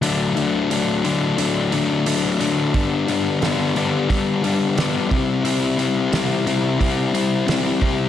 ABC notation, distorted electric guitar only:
X:1
M:4/4
L:1/8
Q:1/4=89
K:Dmix
V:1 name="Distorted electric guitar" clef=bass
[D,F,A,D] [D,F,A,D] [D,F,A,D] [D,F,A,D] [D,F,A,D] [D,F,A,D] [D,F,A,D] [D,F,A,D] | [G,,D,G,B,D] [G,,D,G,B,D] [G,,D,G,B,D] [G,,D,G,B,D] [G,,D,G,B,D] [G,,D,G,B,D] [G,,D,G,B,D] [C,G,CE] | [C,G,CE] [C,G,CE] [C,G,CE] [C,G,CE] [C,G,CE] [C,G,CE] [C,G,CE] [C,G,CE] |]